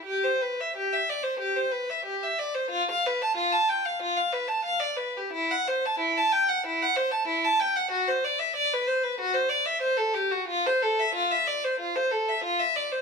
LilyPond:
\new Staff \with { instrumentName = "Violin" } { \time 4/4 \key g \major \tempo 4 = 93 g'16 c''16 b'16 e''16 g'16 e''16 d''16 c''16 g'16 c''16 b'16 e''16 g'16 e''16 d''16 c''16 | f'16 f''16 b'16 a''16 f'16 a''16 g''16 f''16 f'16 f''16 b'16 a''16 f''16 d''16 b'16 g'16 | e'16 fis''16 c''16 a''16 e'16 a''16 g''16 fis''16 e'16 fis''16 c''16 a''16 e'16 a''16 g''16 fis''16 | fis'16 c''16 d''16 e''16 d''16 b'16 c''16 b'16 fis'16 c''16 d''16 e''16 c''16 a'16 g'16 fis'16 |
\key d \dorian f'16 c''16 a'16 e''16 f'16 e''16 d''16 c''16 f'16 c''16 a'16 e''16 f'16 e''16 d''16 c''16 | }